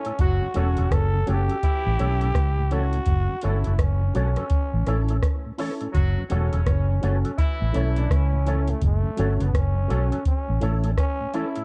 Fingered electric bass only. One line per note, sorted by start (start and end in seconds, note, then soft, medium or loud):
0.20 0.39 F#1 loud
0.56 0.75 E1 loud
0.79 0.90 E1 medium
0.91 1.23 F#1 loud
1.29 1.48 F#1 loud
1.87 1.98 A1 loud
2.01 2.31 B1 medium
2.36 2.98 C#2 loud
3.08 3.27 F#1 loud
3.45 3.64 G1 medium
3.67 3.78 F#1 medium
3.79 4.11 F#1 medium
4.16 4.35 B1 medium
4.74 4.85 A1 loud
4.87 5.18 A1 medium
5.95 6.15 F#1 medium
6.32 6.51 E1 loud
6.54 6.65 E1 medium
6.67 6.98 F#1 loud
7.04 7.23 F#1 medium
7.62 7.73 A1 loud
7.76 8.06 B1 medium
8.11 8.73 C#2 loud
8.83 9.02 F#1 loud
9.19 9.38 G1 medium
9.42 9.53 F#1 medium
9.54 9.86 F#1 medium
9.91 10.10 B1 loud
10.50 10.61 A1 medium
10.62 10.94 A1 loud